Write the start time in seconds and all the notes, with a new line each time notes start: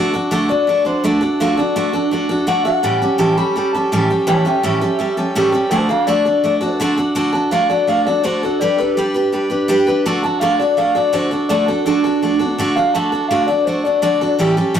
Already playing: D3 A3 D4 F#4 A4
0.14 D4 F#4 A4
0.31 D3 A3 D4 F#4 A4
0.49 D4 F#4 A4 D5
0.67 A3 D4 F#4 A4
0.85 D4 F#4 A4 C5
1.04 D3 A3 D4 F#4 A4
1.21 D4 F#4 A4
1.40 D3 A3 D4 F4 F#4 A4
1.57 D4 F#4 A4
1.76 D3 A3 D4 F#4 A4
1.93 D4 F#4 A4
2.11 A3 D4 F#4 A4
2.29 D4 F#4 A4
2.47 D3 A3 D4 F#4 A4 F#5
2.65 D4 F#4 A4 F#5
2.83 A2 E3 G3 C#4 G4 A4
3.02 G3 C#4 G4 A4
3.18 A2 E3 G3 C#4 G4 A4 A5
3.37 G3 C#4 G4 A4 B5
3.56 G3 C#4 G4 A4
3.73 G3 C#4 G4 A4 A5
3.92 A2 E3 G3 C#4 G4 A4
4.10 G3 C#4 G4 A4
4.27 A2 E3 G3 C#4 G4 A4 C#5 A5
4.45 G3 C#4 G4 A4 E5 G5
4.63 A2 E3 G3 C#4 G4 A4 E5
4.81 G3 C#4 G4 A4
4.99 G3 C#4 G4 A4
5.17 G3 C#4 G4 A4
5.35 A2 E3 G3 C#4 G4 A4
5.52 G3 C#4 G4 A4
5.70 D3 A3 D4 F#4 A4 C5 A5
5.89 D4 F#4 A4 F5
6.07 D3 A3 D4 F#4 A4 D5
6.25 D4 F#4 A4
6.44 A3 D4 F#4 A4
6.61 D4 F#4 A4
6.80 D3 A3 D4 F#4 A4
6.97 D4 F#4 A4
7.15 D3 A3 D4 F#4 A4
7.33 D4 F#4 A4 A5
7.51 D3 A3 D4 F#4 A4 F5
7.70 D4 F#4 A4 D5
7.87 A3 D4 F#4 A4 F5
8.06 D4 F#4 A4 D5
8.24 D3 A3 D4 F#4 A4 C5
8.43 D4 F#4 A4
8.60 G3 D4 G4 B4 D5
8.77 D4 G4 A4 B4
8.95 G3 D4 G4 B4
9.14 D4 G4 B4
9.32 G3 D4 G4 B4
9.50 D4 G4 B4
9.68 G3 D4 G4 B4
9.87 D4 G4 B4
10.06 D3 A3 D4 F#4 A4
10.23 D4 F#4 A4 A5
10.40 D3 A3 D4 F#4 A4 F5
10.59 D4 F#4 A4 D5
10.77 A3 D4 F#4 A4 F5
10.95 D4 F#4 A4 D5
11.13 D3 A3 D4 F#4 A4 C5
11.31 D4 F#4 A4
11.49 D3 A3 D4 F#4 A4 D5
11.66 D4 F#4 A4
11.85 D3 A3 D4 F#4 A4
12.04 D4 F#4 A4
12.22 A3 D4 F#4 A4
12.39 D4 F#4 A4
12.58 D3 A3 D4 F#4 A4
12.76 D4 F#4 A4 F5
12.94 D3 A3 D4 F#4 A4 A5
13.12 D4 F#4 A4
13.29 D3 A3 D4 F#4 A4 F5
13.47 D4 F#4 A4 D5
13.65 A3 D4 F#4 A4 C5
13.84 D4 F#4 A4 D5
14.02 D3 A3 D4 F#4 A4 D5
14.21 D4 F#4 A4
14.39 A2 E3 G3 C#4 G4 A4
14.57 G3 C#4 G4 A4
14.74 A2 E3 G3 C#4 G4 A4